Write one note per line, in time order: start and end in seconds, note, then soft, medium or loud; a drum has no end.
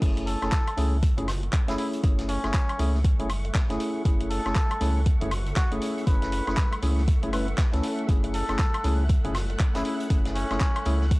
0.01 0.36 F#1 medium
0.01 0.38 A3 medium
0.01 11.20 A3 medium
0.01 0.39 C#4 medium
0.01 0.39 E4 medium
0.01 0.39 G#4 medium
0.01 11.20 E5 medium
0.01 11.20 F#5 medium
0.01 8.08 C#6 medium
0.01 kick loud
0.01 closed hi-hat medium
0.01 crash medium
0.17 closed hi-hat medium
0.27 0.99 A4 medium
0.27 closed hi-hat medium
0.27 open hi-hat loud
0.42 0.50 F#1 medium
0.42 0.51 A3 medium
0.42 0.52 C#4 medium
0.42 0.52 E4 medium
0.42 0.52 G#4 medium
0.42 snare soft
0.42 closed hi-hat soft
0.42 high woodblock medium
0.52 kick loud
0.52 snare loud
0.52 clap loud
0.52 closed hi-hat medium
0.52 high conga medium
0.67 closed hi-hat medium
0.67 high woodblock medium
0.77 1.11 C#2 medium
0.77 0.97 A3 medium
0.77 0.97 C#4 medium
0.77 0.98 E4 medium
0.77 0.98 G#4 medium
0.77 closed hi-hat medium
0.77 open hi-hat loud
0.77 high conga medium
1.03 kick loud
1.03 closed hi-hat loud
1.03 closed hi-hat medium
1.17 1.49 F#1 loud
1.17 1.27 A3 medium
1.17 1.27 C#4 medium
1.17 1.27 E4 medium
1.17 1.27 G#4 medium
1.17 closed hi-hat medium
1.17 high conga medium
1.17 low conga medium
1.28 snare loud
1.28 closed hi-hat medium
1.28 open hi-hat loud
1.28 low conga medium
1.28 high woodblock medium
1.43 closed hi-hat soft
1.53 kick loud
1.53 clap loud
1.53 closed hi-hat medium
1.68 1.76 F#1 loud
1.68 2.01 A3 medium
1.68 2.01 C#4 medium
1.68 2.01 E4 medium
1.68 1.75 E4 medium
1.68 2.01 G#4 loud
1.68 snare loud
1.68 closed hi-hat medium
1.78 1.88 E4 medium
1.78 open hi-hat loud
1.93 closed hi-hat medium
2.03 2.37 F#1 loud
2.03 2.40 A3 medium
2.03 2.40 C#4 medium
2.03 2.40 E4 medium
2.03 2.41 G#4 medium
2.03 kick loud
2.03 closed hi-hat medium
2.19 snare medium
2.19 closed hi-hat medium
2.28 3.01 C#4 loud
2.28 closed hi-hat medium
2.28 open hi-hat loud
2.43 2.51 F#1 medium
2.43 2.53 A3 medium
2.43 2.53 C#4 medium
2.43 2.53 E4 medium
2.43 2.54 G#4 medium
2.43 snare soft
2.43 closed hi-hat soft
2.43 high woodblock medium
2.54 kick loud
2.54 snare loud
2.54 clap loud
2.54 closed hi-hat medium
2.54 high conga medium
2.69 closed hi-hat soft
2.69 high woodblock medium
2.79 3.13 C#2 medium
2.79 2.99 A3 medium
2.79 2.99 C#4 medium
2.79 2.99 E4 medium
2.79 3.00 G#4 medium
2.79 closed hi-hat medium
2.79 open hi-hat loud
2.79 high conga medium
2.95 snare soft
3.05 kick loud
3.05 closed hi-hat medium
3.19 3.50 F#1 loud
3.19 3.29 A3 medium
3.19 3.29 C#4 medium
3.19 3.29 E4 medium
3.19 3.29 G#4 medium
3.19 closed hi-hat medium
3.19 high conga medium
3.30 closed hi-hat medium
3.30 open hi-hat loud
3.30 high woodblock medium
3.45 closed hi-hat soft
3.54 kick loud
3.54 snare loud
3.54 clap loud
3.54 closed hi-hat medium
3.70 3.77 F#1 loud
3.70 4.03 A3 loud
3.70 4.03 C#4 medium
3.70 4.03 E4 medium
3.70 4.03 G#4 loud
3.70 snare soft
3.70 closed hi-hat medium
3.80 closed hi-hat medium
3.80 open hi-hat loud
4.05 4.39 F#1 medium
4.05 4.42 A3 medium
4.05 4.42 C#4 medium
4.05 4.42 E4 medium
4.05 4.42 G#4 medium
4.05 kick loud
4.05 closed hi-hat medium
4.21 closed hi-hat medium
4.31 5.02 A4 medium
4.31 closed hi-hat medium
4.31 open hi-hat loud
4.45 4.53 F#1 medium
4.45 4.55 A3 medium
4.45 4.55 C#4 medium
4.45 4.55 E4 medium
4.45 4.55 G#4 medium
4.45 snare soft
4.45 closed hi-hat soft
4.45 high woodblock medium
4.55 kick loud
4.55 snare loud
4.55 clap loud
4.55 closed hi-hat medium
4.55 high conga medium
4.71 closed hi-hat soft
4.71 high woodblock medium
4.80 5.15 C#2 medium
4.80 5.01 A3 medium
4.80 5.01 C#4 medium
4.80 5.01 E4 medium
4.80 5.01 G#4 medium
4.80 closed hi-hat medium
4.80 open hi-hat loud
4.80 high conga medium
5.06 kick loud
5.06 closed hi-hat medium
5.21 5.52 F#1 loud
5.21 5.30 A3 medium
5.21 5.31 C#4 medium
5.21 5.31 E4 medium
5.21 5.31 G#4 medium
5.21 closed hi-hat medium
5.21 high conga medium
5.21 low conga medium
5.31 closed hi-hat medium
5.31 open hi-hat loud
5.31 low conga medium
5.31 high woodblock medium
5.46 closed hi-hat soft
5.56 5.74 F#4 loud
5.56 kick loud
5.56 snare loud
5.56 clap loud
5.56 closed hi-hat medium
5.71 5.79 F#1 loud
5.71 6.04 A3 loud
5.71 6.05 C#4 medium
5.71 6.05 E4 medium
5.71 6.05 G#4 loud
5.71 closed hi-hat soft
5.82 closed hi-hat medium
5.82 open hi-hat loud
5.98 closed hi-hat soft
6.07 6.41 F#1 loud
6.07 6.44 A3 medium
6.07 6.44 C#4 medium
6.07 6.44 E4 medium
6.07 6.44 G#4 medium
6.07 6.79 B4 medium
6.07 kick loud
6.07 closed hi-hat medium
6.07 closed hi-hat loud
6.22 snare medium
6.22 closed hi-hat soft
6.32 closed hi-hat medium
6.32 open hi-hat loud
6.47 6.55 F#1 medium
6.47 6.56 A3 medium
6.47 6.57 C#4 medium
6.47 6.57 E4 medium
6.47 6.57 G#4 medium
6.47 snare medium
6.47 closed hi-hat soft
6.47 high woodblock medium
6.57 kick loud
6.57 snare loud
6.57 clap loud
6.57 closed hi-hat medium
6.57 high conga medium
6.72 closed hi-hat soft
6.72 high woodblock medium
6.82 7.16 C#2 medium
6.82 7.02 A3 medium
6.82 7.03 C#4 medium
6.82 7.03 E4 medium
6.82 7.03 G#4 medium
6.82 closed hi-hat medium
6.82 open hi-hat loud
6.82 high conga medium
6.98 snare soft
7.08 kick loud
7.08 closed hi-hat medium
7.23 7.54 F#1 loud
7.23 7.31 A3 medium
7.23 7.31 C#4 medium
7.23 7.31 E4 medium
7.23 7.31 G#4 medium
7.23 closed hi-hat soft
7.23 high conga medium
7.33 7.47 A3 medium
7.33 7.47 C#4 medium
7.33 7.47 E4 medium
7.33 7.47 B4 loud
7.33 closed hi-hat medium
7.33 open hi-hat loud
7.33 high woodblock medium
7.48 closed hi-hat soft
7.58 kick loud
7.58 snare loud
7.58 clap loud
7.58 closed hi-hat medium
7.73 7.81 C#2 loud
7.73 8.06 A3 loud
7.73 8.06 C#4 medium
7.73 8.06 E4 medium
7.73 8.06 A4 loud
7.73 snare soft
7.73 closed hi-hat soft
7.83 closed hi-hat medium
7.83 open hi-hat loud
7.99 closed hi-hat soft
8.08 8.42 F#1 loud
8.08 8.45 A3 medium
8.08 8.45 C#4 medium
8.08 8.46 E4 medium
8.08 8.46 G#4 medium
8.08 11.20 F#6 medium
8.08 kick loud
8.08 closed hi-hat medium
8.24 closed hi-hat medium
8.34 9.06 A4 loud
8.34 closed hi-hat medium
8.34 open hi-hat loud
8.49 8.56 F#1 medium
8.49 8.58 A3 medium
8.49 8.58 C#4 medium
8.49 8.58 E4 medium
8.49 8.59 G#4 medium
8.49 snare soft
8.49 closed hi-hat soft
8.49 high woodblock medium
8.59 kick loud
8.59 snare loud
8.59 clap loud
8.59 closed hi-hat medium
8.59 high conga medium
8.74 closed hi-hat soft
8.74 high woodblock medium
8.84 9.18 C#2 medium
8.84 9.04 A3 medium
8.84 9.04 C#4 medium
8.84 9.04 E4 medium
8.84 9.05 G#4 medium
8.84 closed hi-hat medium
8.84 open hi-hat loud
8.84 high conga medium
9.09 kick loud
9.09 closed hi-hat medium
9.24 9.56 F#1 loud
9.24 9.34 A3 medium
9.24 9.34 C#4 medium
9.24 9.34 E4 medium
9.24 9.34 G#4 medium
9.24 closed hi-hat soft
9.24 high conga medium
9.24 low conga medium
9.34 snare loud
9.34 closed hi-hat medium
9.34 open hi-hat loud
9.34 low conga medium
9.34 high woodblock medium
9.50 closed hi-hat soft
9.59 kick loud
9.59 clap loud
9.59 closed hi-hat medium
9.75 9.82 F#1 loud
9.75 10.08 A3 medium
9.75 10.08 C#4 medium
9.75 9.82 E4 medium
9.75 10.08 E4 medium
9.75 10.08 G#4 loud
9.75 snare loud
9.75 closed hi-hat soft
9.75 closed hi-hat medium
9.85 9.95 E4 medium
9.85 open hi-hat loud
10.00 closed hi-hat medium
10.10 10.44 F#1 loud
10.10 10.47 A3 medium
10.10 10.47 C#4 medium
10.10 10.47 E4 medium
10.10 10.47 G#4 medium
10.10 kick loud
10.10 closed hi-hat medium
10.25 snare medium
10.25 closed hi-hat medium
10.35 11.07 C#4 loud
10.35 closed hi-hat medium
10.35 open hi-hat loud
10.50 10.58 F#1 medium
10.50 10.60 A3 medium
10.50 10.60 C#4 medium
10.50 10.60 E4 medium
10.50 10.60 G#4 medium
10.50 snare medium
10.50 closed hi-hat soft
10.50 high woodblock medium
10.60 kick loud
10.60 snare loud
10.60 clap loud
10.60 closed hi-hat medium
10.60 high conga medium
10.76 closed hi-hat medium
10.76 high woodblock medium
10.85 11.20 C#2 medium
10.85 11.06 A3 medium
10.85 11.06 C#4 medium
10.85 11.06 E4 medium
10.85 11.06 G#4 medium
10.85 closed hi-hat medium
10.85 open hi-hat loud
10.85 high conga medium
11.01 snare soft
11.11 kick loud
11.11 closed hi-hat medium